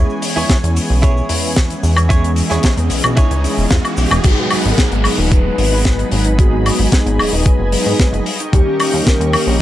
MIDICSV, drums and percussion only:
0, 0, Header, 1, 2, 480
1, 0, Start_track
1, 0, Key_signature, 5, "minor"
1, 0, Tempo, 535714
1, 1883, Time_signature, 4, 2, 24, 8
1, 8619, End_track
2, 0, Start_track
2, 0, Title_t, "Drums"
2, 87, Note_on_c, 9, 69, 23
2, 177, Note_off_c, 9, 69, 0
2, 200, Note_on_c, 9, 46, 109
2, 202, Note_on_c, 9, 69, 83
2, 289, Note_off_c, 9, 46, 0
2, 291, Note_off_c, 9, 69, 0
2, 334, Note_on_c, 9, 69, 34
2, 424, Note_off_c, 9, 69, 0
2, 444, Note_on_c, 9, 36, 99
2, 445, Note_on_c, 9, 42, 88
2, 446, Note_on_c, 9, 38, 113
2, 451, Note_on_c, 9, 69, 52
2, 533, Note_off_c, 9, 36, 0
2, 535, Note_off_c, 9, 38, 0
2, 535, Note_off_c, 9, 42, 0
2, 541, Note_off_c, 9, 69, 0
2, 567, Note_on_c, 9, 69, 24
2, 574, Note_on_c, 9, 42, 65
2, 657, Note_off_c, 9, 69, 0
2, 663, Note_off_c, 9, 42, 0
2, 685, Note_on_c, 9, 46, 96
2, 685, Note_on_c, 9, 69, 87
2, 774, Note_off_c, 9, 46, 0
2, 775, Note_off_c, 9, 69, 0
2, 812, Note_on_c, 9, 69, 38
2, 901, Note_off_c, 9, 69, 0
2, 923, Note_on_c, 9, 36, 109
2, 928, Note_on_c, 9, 42, 90
2, 930, Note_on_c, 9, 69, 49
2, 1013, Note_off_c, 9, 36, 0
2, 1018, Note_off_c, 9, 42, 0
2, 1019, Note_off_c, 9, 69, 0
2, 1052, Note_on_c, 9, 69, 26
2, 1141, Note_off_c, 9, 69, 0
2, 1158, Note_on_c, 9, 46, 111
2, 1165, Note_on_c, 9, 69, 77
2, 1247, Note_off_c, 9, 46, 0
2, 1254, Note_off_c, 9, 69, 0
2, 1296, Note_on_c, 9, 69, 35
2, 1386, Note_off_c, 9, 69, 0
2, 1402, Note_on_c, 9, 38, 120
2, 1403, Note_on_c, 9, 36, 100
2, 1403, Note_on_c, 9, 42, 87
2, 1409, Note_on_c, 9, 69, 51
2, 1491, Note_off_c, 9, 38, 0
2, 1493, Note_off_c, 9, 36, 0
2, 1493, Note_off_c, 9, 42, 0
2, 1499, Note_off_c, 9, 69, 0
2, 1526, Note_on_c, 9, 42, 55
2, 1533, Note_on_c, 9, 69, 23
2, 1616, Note_off_c, 9, 42, 0
2, 1622, Note_off_c, 9, 69, 0
2, 1644, Note_on_c, 9, 46, 90
2, 1645, Note_on_c, 9, 69, 86
2, 1734, Note_off_c, 9, 46, 0
2, 1734, Note_off_c, 9, 69, 0
2, 1761, Note_on_c, 9, 76, 82
2, 1769, Note_on_c, 9, 42, 61
2, 1769, Note_on_c, 9, 69, 41
2, 1851, Note_off_c, 9, 76, 0
2, 1858, Note_off_c, 9, 69, 0
2, 1859, Note_off_c, 9, 42, 0
2, 1883, Note_on_c, 9, 36, 117
2, 1884, Note_on_c, 9, 42, 89
2, 1888, Note_on_c, 9, 69, 53
2, 1973, Note_off_c, 9, 36, 0
2, 1974, Note_off_c, 9, 42, 0
2, 1978, Note_off_c, 9, 69, 0
2, 2011, Note_on_c, 9, 42, 54
2, 2011, Note_on_c, 9, 69, 22
2, 2101, Note_off_c, 9, 42, 0
2, 2101, Note_off_c, 9, 69, 0
2, 2116, Note_on_c, 9, 46, 97
2, 2128, Note_on_c, 9, 69, 85
2, 2205, Note_off_c, 9, 46, 0
2, 2217, Note_off_c, 9, 69, 0
2, 2247, Note_on_c, 9, 38, 35
2, 2248, Note_on_c, 9, 42, 56
2, 2258, Note_on_c, 9, 69, 40
2, 2337, Note_off_c, 9, 38, 0
2, 2338, Note_off_c, 9, 42, 0
2, 2347, Note_off_c, 9, 69, 0
2, 2356, Note_on_c, 9, 42, 83
2, 2364, Note_on_c, 9, 36, 100
2, 2369, Note_on_c, 9, 69, 45
2, 2372, Note_on_c, 9, 38, 113
2, 2445, Note_off_c, 9, 42, 0
2, 2453, Note_off_c, 9, 36, 0
2, 2458, Note_off_c, 9, 69, 0
2, 2461, Note_off_c, 9, 38, 0
2, 2486, Note_on_c, 9, 42, 64
2, 2492, Note_on_c, 9, 69, 25
2, 2576, Note_off_c, 9, 42, 0
2, 2582, Note_off_c, 9, 69, 0
2, 2597, Note_on_c, 9, 46, 106
2, 2606, Note_on_c, 9, 69, 93
2, 2687, Note_off_c, 9, 46, 0
2, 2696, Note_off_c, 9, 69, 0
2, 2723, Note_on_c, 9, 76, 78
2, 2727, Note_on_c, 9, 42, 51
2, 2728, Note_on_c, 9, 69, 41
2, 2813, Note_off_c, 9, 76, 0
2, 2817, Note_off_c, 9, 42, 0
2, 2817, Note_off_c, 9, 69, 0
2, 2838, Note_on_c, 9, 42, 86
2, 2843, Note_on_c, 9, 36, 117
2, 2849, Note_on_c, 9, 69, 53
2, 2928, Note_off_c, 9, 42, 0
2, 2933, Note_off_c, 9, 36, 0
2, 2939, Note_off_c, 9, 69, 0
2, 2966, Note_on_c, 9, 42, 54
2, 2968, Note_on_c, 9, 69, 24
2, 3055, Note_off_c, 9, 42, 0
2, 3057, Note_off_c, 9, 69, 0
2, 3084, Note_on_c, 9, 46, 101
2, 3091, Note_on_c, 9, 69, 85
2, 3174, Note_off_c, 9, 46, 0
2, 3181, Note_off_c, 9, 69, 0
2, 3210, Note_on_c, 9, 69, 35
2, 3300, Note_off_c, 9, 69, 0
2, 3320, Note_on_c, 9, 42, 80
2, 3321, Note_on_c, 9, 38, 126
2, 3324, Note_on_c, 9, 36, 102
2, 3325, Note_on_c, 9, 69, 44
2, 3409, Note_off_c, 9, 42, 0
2, 3410, Note_off_c, 9, 38, 0
2, 3413, Note_off_c, 9, 36, 0
2, 3415, Note_off_c, 9, 69, 0
2, 3446, Note_on_c, 9, 69, 23
2, 3447, Note_on_c, 9, 76, 65
2, 3450, Note_on_c, 9, 42, 58
2, 3536, Note_off_c, 9, 69, 0
2, 3537, Note_off_c, 9, 76, 0
2, 3539, Note_off_c, 9, 42, 0
2, 3556, Note_on_c, 9, 69, 86
2, 3565, Note_on_c, 9, 46, 109
2, 3646, Note_off_c, 9, 69, 0
2, 3654, Note_off_c, 9, 46, 0
2, 3685, Note_on_c, 9, 42, 71
2, 3686, Note_on_c, 9, 76, 77
2, 3692, Note_on_c, 9, 69, 39
2, 3774, Note_off_c, 9, 42, 0
2, 3775, Note_off_c, 9, 76, 0
2, 3781, Note_off_c, 9, 69, 0
2, 3797, Note_on_c, 9, 42, 92
2, 3803, Note_on_c, 9, 36, 122
2, 3806, Note_on_c, 9, 49, 109
2, 3886, Note_off_c, 9, 42, 0
2, 3893, Note_off_c, 9, 36, 0
2, 3896, Note_off_c, 9, 49, 0
2, 4036, Note_on_c, 9, 46, 109
2, 4037, Note_on_c, 9, 76, 67
2, 4126, Note_off_c, 9, 46, 0
2, 4126, Note_off_c, 9, 76, 0
2, 4283, Note_on_c, 9, 36, 104
2, 4284, Note_on_c, 9, 42, 85
2, 4288, Note_on_c, 9, 38, 127
2, 4373, Note_off_c, 9, 36, 0
2, 4374, Note_off_c, 9, 42, 0
2, 4378, Note_off_c, 9, 38, 0
2, 4407, Note_on_c, 9, 42, 63
2, 4497, Note_off_c, 9, 42, 0
2, 4516, Note_on_c, 9, 76, 74
2, 4523, Note_on_c, 9, 46, 112
2, 4605, Note_off_c, 9, 76, 0
2, 4613, Note_off_c, 9, 46, 0
2, 4764, Note_on_c, 9, 36, 122
2, 4764, Note_on_c, 9, 42, 93
2, 4853, Note_off_c, 9, 36, 0
2, 4854, Note_off_c, 9, 42, 0
2, 5002, Note_on_c, 9, 46, 115
2, 5092, Note_off_c, 9, 46, 0
2, 5241, Note_on_c, 9, 42, 90
2, 5244, Note_on_c, 9, 36, 107
2, 5245, Note_on_c, 9, 38, 124
2, 5330, Note_off_c, 9, 42, 0
2, 5334, Note_off_c, 9, 36, 0
2, 5334, Note_off_c, 9, 38, 0
2, 5368, Note_on_c, 9, 42, 55
2, 5458, Note_off_c, 9, 42, 0
2, 5479, Note_on_c, 9, 46, 106
2, 5569, Note_off_c, 9, 46, 0
2, 5595, Note_on_c, 9, 42, 69
2, 5684, Note_off_c, 9, 42, 0
2, 5723, Note_on_c, 9, 36, 123
2, 5730, Note_on_c, 9, 42, 84
2, 5813, Note_off_c, 9, 36, 0
2, 5820, Note_off_c, 9, 42, 0
2, 5966, Note_on_c, 9, 46, 112
2, 5968, Note_on_c, 9, 76, 60
2, 6056, Note_off_c, 9, 46, 0
2, 6058, Note_off_c, 9, 76, 0
2, 6201, Note_on_c, 9, 42, 86
2, 6203, Note_on_c, 9, 36, 107
2, 6212, Note_on_c, 9, 38, 124
2, 6290, Note_off_c, 9, 42, 0
2, 6293, Note_off_c, 9, 36, 0
2, 6301, Note_off_c, 9, 38, 0
2, 6331, Note_on_c, 9, 42, 62
2, 6421, Note_off_c, 9, 42, 0
2, 6446, Note_on_c, 9, 76, 72
2, 6454, Note_on_c, 9, 46, 112
2, 6536, Note_off_c, 9, 76, 0
2, 6544, Note_off_c, 9, 46, 0
2, 6681, Note_on_c, 9, 42, 89
2, 6683, Note_on_c, 9, 36, 124
2, 6771, Note_off_c, 9, 42, 0
2, 6773, Note_off_c, 9, 36, 0
2, 6921, Note_on_c, 9, 46, 108
2, 7010, Note_off_c, 9, 46, 0
2, 7164, Note_on_c, 9, 36, 114
2, 7164, Note_on_c, 9, 42, 91
2, 7166, Note_on_c, 9, 38, 123
2, 7253, Note_off_c, 9, 42, 0
2, 7254, Note_off_c, 9, 36, 0
2, 7255, Note_off_c, 9, 38, 0
2, 7291, Note_on_c, 9, 42, 52
2, 7381, Note_off_c, 9, 42, 0
2, 7402, Note_on_c, 9, 46, 109
2, 7492, Note_off_c, 9, 46, 0
2, 7527, Note_on_c, 9, 42, 62
2, 7617, Note_off_c, 9, 42, 0
2, 7645, Note_on_c, 9, 36, 127
2, 7645, Note_on_c, 9, 42, 86
2, 7734, Note_off_c, 9, 36, 0
2, 7735, Note_off_c, 9, 42, 0
2, 7882, Note_on_c, 9, 46, 109
2, 7886, Note_on_c, 9, 76, 67
2, 7971, Note_off_c, 9, 46, 0
2, 7975, Note_off_c, 9, 76, 0
2, 8125, Note_on_c, 9, 36, 112
2, 8128, Note_on_c, 9, 42, 90
2, 8130, Note_on_c, 9, 38, 122
2, 8214, Note_off_c, 9, 36, 0
2, 8217, Note_off_c, 9, 42, 0
2, 8219, Note_off_c, 9, 38, 0
2, 8253, Note_on_c, 9, 42, 69
2, 8342, Note_off_c, 9, 42, 0
2, 8362, Note_on_c, 9, 46, 109
2, 8364, Note_on_c, 9, 76, 81
2, 8452, Note_off_c, 9, 46, 0
2, 8453, Note_off_c, 9, 76, 0
2, 8619, End_track
0, 0, End_of_file